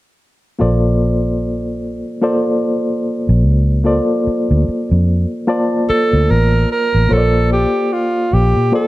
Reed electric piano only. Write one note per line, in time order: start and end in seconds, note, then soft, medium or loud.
0.59 2.01 A#3 medium
0.59 2.01 F4 medium
0.59 2.01 A4 medium
0.59 2.02 C5 medium
0.59 2.02 D5 medium
2.21 3.63 A#3 medium
2.21 3.64 F4 medium
2.21 3.64 A4 medium
2.21 3.64 C5 medium
2.21 3.65 D5 medium
3.84 5.26 A#3 medium
3.84 5.26 F4 medium
3.84 5.27 A4 medium
3.84 5.27 C5 medium
3.84 5.27 D5 medium
5.47 6.89 A#3 medium
5.47 6.89 F4 medium
5.47 6.89 C5 medium
5.47 6.90 D5 medium
5.47 6.89 A5 medium
7.09 8.51 A#3 medium
7.09 8.51 F4 medium
7.09 8.51 A4 medium
7.09 8.51 C5 medium
7.09 7.18 C#5 medium
7.18 8.55 D5 medium
8.72 8.87 A#3 medium
8.72 8.87 F4 medium
8.72 8.87 A4 medium
8.72 8.87 C5 medium
8.72 8.87 D5 medium